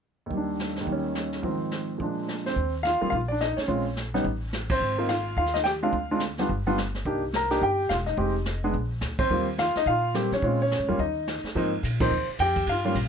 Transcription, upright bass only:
0, 0, Header, 1, 3, 480
1, 0, Start_track
1, 0, Key_signature, -3, "major"
1, 0, Tempo, 281030
1, 526, Time_signature, 4, 2, 24, 8
1, 22344, End_track
2, 0, Start_track
2, 0, Title_t, "Upright bass"
2, 0, Program_c, 0, 32
2, 4378, Note_on_c, 0, 39, 71
2, 5095, Note_off_c, 0, 39, 0
2, 5152, Note_on_c, 0, 40, 65
2, 5322, Note_off_c, 0, 40, 0
2, 5335, Note_on_c, 0, 34, 81
2, 6054, Note_off_c, 0, 34, 0
2, 6284, Note_on_c, 0, 34, 77
2, 7200, Note_off_c, 0, 34, 0
2, 7253, Note_on_c, 0, 33, 79
2, 8165, Note_off_c, 0, 33, 0
2, 8209, Note_on_c, 0, 32, 78
2, 9122, Note_off_c, 0, 32, 0
2, 9165, Note_on_c, 0, 39, 75
2, 10080, Note_off_c, 0, 39, 0
2, 10125, Note_on_c, 0, 38, 79
2, 11040, Note_off_c, 0, 38, 0
2, 11091, Note_on_c, 0, 31, 80
2, 12003, Note_off_c, 0, 31, 0
2, 12049, Note_on_c, 0, 36, 74
2, 12962, Note_off_c, 0, 36, 0
2, 13008, Note_on_c, 0, 31, 81
2, 13455, Note_off_c, 0, 31, 0
2, 13490, Note_on_c, 0, 28, 73
2, 13936, Note_off_c, 0, 28, 0
2, 13954, Note_on_c, 0, 29, 79
2, 14874, Note_off_c, 0, 29, 0
2, 14922, Note_on_c, 0, 34, 81
2, 15372, Note_off_c, 0, 34, 0
2, 15395, Note_on_c, 0, 38, 81
2, 15848, Note_off_c, 0, 38, 0
2, 15877, Note_on_c, 0, 39, 82
2, 16602, Note_off_c, 0, 39, 0
2, 16842, Note_on_c, 0, 46, 83
2, 17565, Note_off_c, 0, 46, 0
2, 17611, Note_on_c, 0, 41, 67
2, 17789, Note_off_c, 0, 41, 0
2, 17797, Note_on_c, 0, 46, 83
2, 18397, Note_off_c, 0, 46, 0
2, 18430, Note_on_c, 0, 44, 62
2, 18587, Note_off_c, 0, 44, 0
2, 18596, Note_on_c, 0, 40, 69
2, 18750, Note_off_c, 0, 40, 0
2, 18769, Note_on_c, 0, 39, 80
2, 19488, Note_off_c, 0, 39, 0
2, 19733, Note_on_c, 0, 44, 80
2, 20195, Note_off_c, 0, 44, 0
2, 20207, Note_on_c, 0, 46, 89
2, 20663, Note_off_c, 0, 46, 0
2, 20673, Note_on_c, 0, 39, 85
2, 20952, Note_off_c, 0, 39, 0
2, 21161, Note_on_c, 0, 41, 92
2, 21628, Note_off_c, 0, 41, 0
2, 21640, Note_on_c, 0, 43, 79
2, 22103, Note_off_c, 0, 43, 0
2, 22114, Note_on_c, 0, 34, 87
2, 22344, Note_off_c, 0, 34, 0
2, 22344, End_track
3, 0, Start_track
3, 0, Title_t, "Muted upright bass strokes"
3, 6108, Note_on_c, 9, 29, 36
3, 6279, Note_off_c, 9, 29, 0
3, 16660, Note_on_c, 9, 29, 38
3, 16831, Note_off_c, 9, 29, 0
3, 19527, Note_on_c, 9, 29, 35
3, 19698, Note_off_c, 9, 29, 0
3, 20976, Note_on_c, 9, 29, 41
3, 21146, Note_off_c, 9, 29, 0
3, 22344, End_track
0, 0, End_of_file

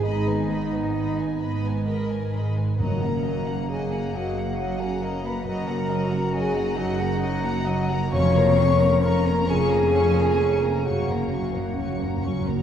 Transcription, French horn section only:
0, 0, Header, 1, 2, 480
1, 0, Start_track
1, 0, Tempo, 916031
1, 23, Time_signature, 6, 3, 24, 8
1, 1943, Tempo, 878477
1, 3863, Tempo, 902256
1, 4823, Tempo, 918836
1, 6703, End_track
2, 0, Start_track
2, 0, Title_t, "French horn section"
2, 0, Program_c, 0, 60
2, 16, Note_on_c, 0, 63, 111
2, 1225, Note_off_c, 0, 63, 0
2, 1462, Note_on_c, 0, 70, 90
2, 1917, Note_off_c, 0, 70, 0
2, 1939, Note_on_c, 0, 68, 85
2, 2181, Note_off_c, 0, 68, 0
2, 2189, Note_on_c, 0, 66, 88
2, 2538, Note_off_c, 0, 66, 0
2, 2540, Note_on_c, 0, 68, 77
2, 2658, Note_on_c, 0, 70, 103
2, 2661, Note_off_c, 0, 68, 0
2, 2776, Note_off_c, 0, 70, 0
2, 2795, Note_on_c, 0, 71, 93
2, 2902, Note_on_c, 0, 70, 117
2, 2907, Note_off_c, 0, 71, 0
2, 3378, Note_off_c, 0, 70, 0
2, 3379, Note_on_c, 0, 68, 99
2, 3617, Note_off_c, 0, 68, 0
2, 3617, Note_on_c, 0, 66, 112
2, 4344, Note_on_c, 0, 73, 127
2, 4345, Note_off_c, 0, 66, 0
2, 4810, Note_off_c, 0, 73, 0
2, 4814, Note_on_c, 0, 70, 114
2, 5053, Note_off_c, 0, 70, 0
2, 5056, Note_on_c, 0, 68, 127
2, 5781, Note_off_c, 0, 68, 0
2, 5783, Note_on_c, 0, 66, 90
2, 6703, Note_off_c, 0, 66, 0
2, 6703, End_track
0, 0, End_of_file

